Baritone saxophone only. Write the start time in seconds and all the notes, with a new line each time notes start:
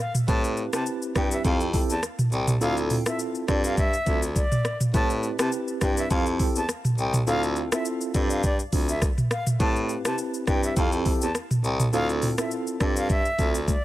0.28 A2
0.73 C3
1.16 G2
1.45 F2
1.90 E2
2.32 C2
2.61 D2
3.48 G2
4.07 D2
4.94 A2
5.39 C3
5.82 G2
6.11 F2
6.56 E2
6.98 C2
7.27 D2
8.15 G2
8.73 D2
9.60 A2
10.05 C3
10.47 G2
10.77 F2
11.22 E2
11.64 C2
11.93 D2
12.81 G2
13.39 D2